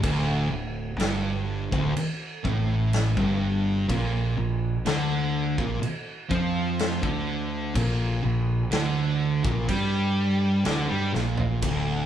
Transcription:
0.02 fingered electric bass D1, distorted electric guitar D2, kick, crash
0.50 fingered electric bass D1, distorted electric guitar D2
0.99 fingered electric bass G1, distorted electric guitar G2, snare, crash
1.71 fingered electric bass D1, distorted electric guitar D2, kick
1.95 muted distorted electric guitar stroke, muted fingered electric bass stroke, crash
2.44 fingered electric bass A1, distorted electric guitar A2, kick
2.93 snare, crash
3.17 fingered electric bass G1, distorted electric guitar G2, kick
3.89 fingered electric bass A#1, distorted electric guitar A#2, kick, crash
4.37 fingered electric bass A#1, distorted electric guitar A#2
4.85 fingered electric bass D2, distorted electric guitar D3, snare, crash
5.58 fingered electric bass A#1, distorted electric guitar A#2, kick
5.82 muted distorted electric guitar stroke, muted fingered electric bass stroke, crash
6.30 fingered electric bass F2, distorted electric guitar F3, kick
6.79 snare, crash
7.02 fingered electric bass D2, distorted electric guitar D3, kick
7.75 fingered electric bass A#1, distorted electric guitar A#2, kick, crash
8.23 fingered electric bass A#1, distorted electric guitar A#2
8.71 fingered electric bass D2, distorted electric guitar D3, snare, crash
9.44 fingered electric bass A#1, distorted electric guitar A#2, kick
9.68 fingered electric bass G2, distorted electric guitar G3, kick, crash
10.65 fingered electric bass D2, distorted electric guitar D3, snare, crash
10.88 fingered electric bass G2, distorted electric guitar G3
11.12 fingered electric bass A#1, distorted electric guitar A#2, snare
11.38 floor tom
11.62 fingered electric bass D1, distorted electric guitar D2, kick, ride

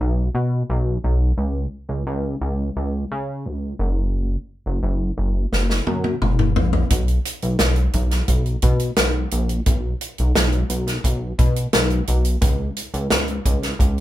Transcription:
0.01 analog synth bass B1
0.35 analog synth bass B2
0.70 analog synth bass B1
1.04 analog synth bass B1
1.38 analog synth bass C#2
1.89 analog synth bass C#2
2.07 analog synth bass C#2
2.41 analog synth bass C#2
2.76 analog synth bass C#2
3.12 analog synth bass C#3
3.45 analog synth bass C#2
3.79 analog synth bass F#1
4.66 analog synth bass F#1
4.83 analog synth bass F#1
5.18 analog synth bass F#1
5.53 analog synth bass F#1, snare
5.70 snare
5.87 analog synth bass F#2, high tom
6.04 high tom
6.22 analog synth bass F#1, mid tom
6.39 mid tom
6.56 analog synth bass A#1, floor tom
6.73 floor tom
6.90 analog synth bass B1, kick, closed hi-hat
7.08 closed hi-hat
7.25 closed hi-hat
7.42 analog synth bass B1, closed hi-hat
7.59 analog synth bass B1, snare, closed hi-hat
7.76 closed hi-hat
7.93 analog synth bass B1, kick, closed hi-hat
8.11 snare, closed hi-hat
8.28 analog synth bass B1, kick, closed hi-hat
8.46 closed hi-hat
8.62 analog synth bass B2, kick, closed hi-hat
8.80 closed hi-hat
8.96 analog synth bass B1, snare, closed hi-hat
9.31 analog synth bass A#1, closed hi-hat
9.49 closed hi-hat
9.66 analog synth bass B1, kick, closed hi-hat
10.01 closed hi-hat
10.18 analog synth bass B1, closed hi-hat
10.35 analog synth bass B1, snare, closed hi-hat
10.52 closed hi-hat
10.69 analog synth bass B1, closed hi-hat
10.87 snare, closed hi-hat
11.04 analog synth bass B1, kick, closed hi-hat
11.38 analog synth bass B2, kick, closed hi-hat
11.56 closed hi-hat
11.73 analog synth bass B1, snare, closed hi-hat
11.90 closed hi-hat
12.07 analog synth bass B1, closed hi-hat
12.25 closed hi-hat
12.41 analog synth bass C#2, kick, closed hi-hat
12.76 closed hi-hat
12.94 analog synth bass C#2, closed hi-hat
13.10 analog synth bass C#2, snare, closed hi-hat
13.28 closed hi-hat
13.45 analog synth bass C#2, kick, closed hi-hat
13.63 snare, closed hi-hat
13.79 analog synth bass C#2, kick, closed hi-hat

